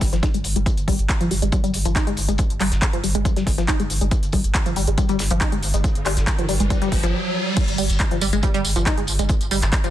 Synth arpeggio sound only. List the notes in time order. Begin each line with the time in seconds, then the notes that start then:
0.13 F3
0.23 D#4
0.34 G#3
0.56 G#3
0.88 G3
1.21 F3
1.31 G3
1.42 G#3
1.53 G3
1.64 G3
1.85 F3
1.96 D#4
2.07 G#3
2.28 G#3
2.60 G3
2.93 F3
3.04 G3
3.15 G#3
3.25 G3
3.37 G3
3.58 F3
3.69 D#4
3.80 G#3
4.01 G#3
4.33 G3
4.66 F3
4.76 G3
4.88 G#3
4.98 G3
5.09 G3
5.31 F3
5.41 D#4
5.52 G#3
5.74 G#3
6.06 G3
6.38 F3
6.49 G3
6.60 G#3
6.70 G3
6.82 G3
7.03 F3
7.78 G3
8.11 F3
8.22 G3
8.33 G#3
8.43 G3
8.54 G3
8.76 F3
8.86 D#4
8.98 G#3
9.19 G#3
9.51 G3
9.84 F3